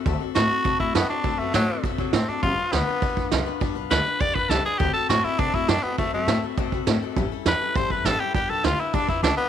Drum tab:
HH |o---o---|o-o-o-o-|o-o-o-o-|o---o-o-|
SD |--o---o-|--o---o-|--o---o-|--o---o-|
BD |o---oo--|o---oo--|o---oo--|o---oo--|

HH |o---o---|o---o---|o---o-o-|o-o-o---|
SD |--o---o-|--o---o-|--o---o-|--o---o-|
BD |o---oo--|o---oo--|o---oo--|o---oo--|